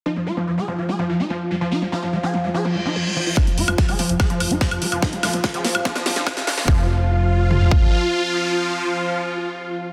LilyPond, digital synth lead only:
\new Staff \with { instrumentName = "Digital synth lead" } { \clef bass \time 4/4 \key f \minor \tempo 4 = 145 ees'16 f16 f'16 f16 f16 aes'16 f16 f16 aes'16 f16 f16 ees'16 f16 r16 f16 f16 | ees'16 f16 f'16 f16 f16 aes'16 f16 f16 aes'16 f16 f16 ees'16 f16 r16 f16 f16 | ees'16 f16 f'16 f16 f16 aes'16 f16 f16 aes'16 f16 f16 ees'16 f16 r16 f16 f16 | ees'16 f16 f'16 f16 f16 aes'16 f16 f16 aes'16 f16 f16 ees'16 f16 r16 f16 f16 |
f'1~ | f'1 | }